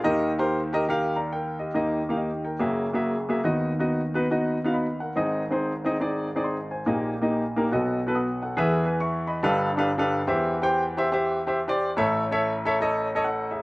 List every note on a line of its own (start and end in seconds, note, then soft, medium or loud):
0.03 1.70 D#2 medium
0.03 1.70 D#3 medium
0.03 0.30 G4 medium
0.03 0.30 A#4 medium
0.03 0.30 D#5 loud
0.39 0.59 G4 medium
0.39 0.59 A#4 medium
0.39 0.59 C5 loud
0.73 0.83 G4 medium
0.73 0.84 A#4 medium
0.73 0.84 D#5 loud
0.89 1.15 G4 medium
0.89 1.15 A#4 medium
0.89 1.15 F5 loud
1.16 1.31 D5 medium
1.16 1.31 A#5 medium
1.33 1.58 A#4 medium
1.33 1.58 G5 medium
1.59 1.74 G4 medium
1.59 1.74 D#5 medium
1.74 2.56 D#2 medium
1.74 2.56 D#3 medium
1.74 2.00 A#3 medium
1.74 2.00 D#4 medium
1.74 2.00 G4 medium
1.74 2.01 D#5 medium
2.09 2.29 A#3 medium
2.09 2.30 D#4 medium
2.09 2.17 G4 medium
2.09 2.18 F5 medium
2.17 2.43 G4 soft
2.17 2.43 D#5 medium
2.45 2.85 A#4 soft
2.45 2.85 G5 medium
2.59 3.41 F#1 medium
2.59 3.41 F#2 medium
2.59 2.85 A#3 medium
2.59 2.85 F#4 medium
2.59 2.86 G#4 medium
2.59 2.86 E5 medium
2.93 3.14 A#3 medium
2.93 3.14 F#4 medium
2.93 3.14 G#4 medium
2.93 3.15 E5 medium
3.29 3.39 A#3 medium
3.29 3.39 F#4 medium
3.29 3.39 G#4 medium
3.29 3.40 E5 medium
3.44 5.12 D#2 medium
3.44 5.12 D#3 medium
3.44 3.70 B3 medium
3.44 3.70 D#4 medium
3.44 3.71 F#4 medium
3.44 3.71 D#5 medium
3.79 4.00 B3 medium
3.79 4.00 D#4 medium
3.79 4.00 F#4 medium
3.79 4.00 D#5 medium
4.14 4.25 B3 medium
4.14 4.25 D#4 medium
4.14 4.25 F#4 medium
4.14 4.25 B4 medium
4.30 4.56 B3 medium
4.30 4.57 D#4 medium
4.30 4.57 F#4 medium
4.30 4.57 D#5 medium
4.64 4.85 B3 medium
4.64 4.85 D#4 medium
4.64 4.86 F#4 medium
4.64 4.74 F5 medium
4.74 5.00 D#5 soft
4.74 4.99 B5 medium
5.00 5.41 A#4 soft
5.00 5.41 F#5 medium
5.16 6.83 G#1 medium
5.16 6.84 G#2 medium
5.16 5.42 C4 medium
5.16 5.42 D#4 medium
5.16 5.42 G#4 medium
5.16 5.42 D#5 medium
5.51 5.71 C4 medium
5.51 5.71 D#4 medium
5.51 5.71 G#4 medium
5.51 5.72 C5 medium
5.85 5.95 C4 medium
5.85 5.96 D#4 medium
5.85 5.96 G#4 medium
5.85 5.96 D#5 medium
6.00 6.27 C4 medium
6.00 6.27 D#4 medium
6.00 6.27 G#4 medium
6.00 6.27 D5 medium
6.36 6.56 C4 medium
6.36 6.56 D#4 medium
6.36 6.56 G#4 medium
6.36 6.45 D5 medium
6.44 6.70 D#5 medium
6.44 6.70 C6 medium
6.71 7.12 C5 soft
6.71 7.12 G#5 medium
6.86 7.68 A#1 medium
6.86 7.69 A#2 medium
6.86 7.13 A#3 medium
6.86 7.13 D#4 medium
6.86 7.13 G4 medium
6.86 7.13 D#5 medium
7.22 7.42 A#3 medium
7.22 7.42 D#4 medium
7.22 7.42 G4 medium
7.22 7.43 D#5 medium
7.56 7.67 A#3 medium
7.56 7.67 D#4 medium
7.56 7.67 G4 medium
7.56 7.67 A#4 medium
7.71 8.54 B1 medium
7.71 8.54 B2 medium
7.71 7.98 B3 medium
7.71 7.98 F#4 medium
7.71 7.98 A4 medium
7.71 7.99 D#5 medium
8.07 8.27 B3 medium
8.07 8.27 F#4 medium
8.07 8.16 A4 medium
8.07 8.16 B4 medium
8.15 8.41 F#5 soft
8.15 8.41 D#6 medium
8.43 8.83 A4 soft
8.43 8.83 F#5 medium
8.57 9.39 E2 medium
8.57 9.39 E3 medium
8.57 8.83 G#4 medium
8.57 8.83 B4 medium
8.57 8.84 E5 loud
8.85 9.00 B4 medium
8.85 9.00 G#5 medium
9.00 9.27 E5 medium
9.00 9.26 C#6 medium
9.27 9.68 D#5 medium
9.27 9.68 B5 medium
9.43 10.24 G1 medium
9.43 10.24 G2 medium
9.43 9.69 D4 medium
9.43 9.69 G4 medium
9.43 9.69 A4 medium
9.43 9.69 B4 medium
9.43 9.69 F5 loud
9.77 9.89 D4 medium
9.77 9.89 G4 medium
9.77 9.89 A4 medium
9.77 9.89 B4 medium
9.77 9.90 F5 loud
9.98 10.19 D4 medium
9.98 10.19 G4 medium
9.98 10.19 A4 medium
9.98 10.19 B4 medium
9.98 10.20 F5 loud
10.27 11.93 E2 medium
10.27 11.93 E3 medium
10.27 10.53 G4 medium
10.27 10.53 C5 medium
10.27 10.54 E5 medium
10.62 10.82 G4 medium
10.62 10.83 C5 medium
10.62 10.83 G5 loud
10.97 11.07 G4 medium
10.97 11.07 C5 medium
10.97 11.08 E5 loud
11.12 11.38 G4 medium
11.12 11.38 C5 medium
11.12 11.39 E5 loud
11.47 11.58 G4 medium
11.47 11.59 C5 medium
11.47 11.59 E5 medium
11.68 11.89 G4 medium
11.68 11.89 C5 medium
11.68 11.89 D5 loud
11.97 13.62 A1 medium
11.97 13.62 A2 medium
11.97 12.23 A4 medium
11.97 12.23 C#5 medium
11.97 12.23 E5 loud
12.31 12.52 A4 medium
12.31 12.52 C#5 medium
12.31 12.52 E5 loud
12.65 12.76 A4 loud
12.65 12.76 C#5 medium
12.65 12.76 E5 loud
12.81 13.07 A4 medium
12.81 13.07 C#5 medium
12.81 13.08 D#5 loud
13.15 13.23 A4 medium
13.15 13.24 C#5 medium
13.15 13.24 D#5 loud
13.24 13.50 A4 medium
13.24 13.50 F#5 medium
13.51 13.62 G#4 medium
13.51 13.62 E5 medium